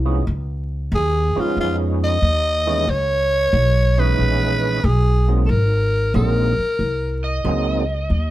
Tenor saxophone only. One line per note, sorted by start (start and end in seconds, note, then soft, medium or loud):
0.95 1.41 G#4 medium
1.40 1.59 F4 medium
1.60 1.76 F4 medium
2.04 2.91 D#5 loud
2.90 4.01 C#5 loud
3.99 4.86 B4 loud
4.85 5.32 G#4 medium
5.46 5.52 A4 medium
5.50 6.15 A#4 medium
6.15 7.41 A#4 medium